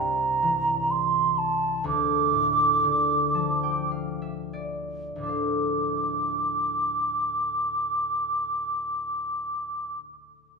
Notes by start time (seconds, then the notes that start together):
Already playing: C2 C3 A3 D4 F4 A#5
0.43 E3
0.90 C6
1.38 A5
1.84 D2 D6
2.33 A2
2.84 D3
3.34 F3 A5
3.63 G5
3.92 F5
4.22 E5
4.53 D5
5.16 D2 A2
5.21 F3 D4 D6
5.26 A4 F5